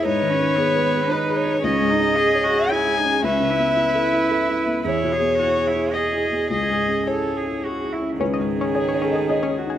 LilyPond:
<<
  \new Staff \with { instrumentName = "Violin" } { \time 3/4 \key cis \minor \tempo 4 = 111 cis''2 b'8 cis''8 | dis''2 gis''4 | e''2~ e''8 r8 | cis''2 dis''4 |
dis''4 cis''4 r4 | r4 gis'8 a'8 gis'8 fis'8 | }
  \new Staff \with { instrumentName = "Synth pluck" } { \time 3/4 \key cis \minor r2. | r2. | r2. | r2. |
r2. | cis'16 dis''16 r16 cis'16 gis'16 cis''16 cis'16 gis'16 gis'16 cis'16 r16 gis'16 | }
  \new Staff \with { instrumentName = "Viola" } { \time 3/4 \key cis \minor b'2. | gis'2. | b'2. | gis'2.~ |
gis'2~ gis'8 r8 | gis'2. | }
  \new Staff \with { instrumentName = "Cello" } { \time 3/4 \key cis \minor dis'8 cis'8 b4 dis'4 | cis'8 dis'8 gis'8 fis'8 e'8 dis'8 | cis'8 e'2~ e'8 | e'8 gis'8 fis'8 e'8 gis'4 |
gis'4 a'8 gis'8 fis'8 e'8 | dis2. | }
  \new Staff \with { instrumentName = "Felt piano" } { \time 3/4 \key cis \minor << { r2. | r2. | r2. | r2. |
r2. | b'4 cis''4 dis''4 | } \\ { \tuplet 3/2 { gis,8 dis8 dis'8 gis'8 b'8 gis'8 b'8 gis'8 dis'8 } | \tuplet 3/2 { cis,8 gis,8 cis'8 gis'8 cis''8 gis'8 cis''8 gis'8 cis'8 } | \tuplet 3/2 { cis,8 cis8 b8 e'8 a'8 e'8 a'8 e'8 b8 } | \tuplet 3/2 { e,8 b,8 b8 e'8 gis'8 e'8 gis'8 e'8 b8 } |
\tuplet 3/2 { cis,8 gis,8 cis'8 e'8 gis'8 e'8 gis'8 e'8 cis'8 } | \tuplet 3/2 { cis,8 gis,8 cis'8 gis'8 cis''8 dis''8 cis''8 gis'8 dis'8 } | } >> }
>>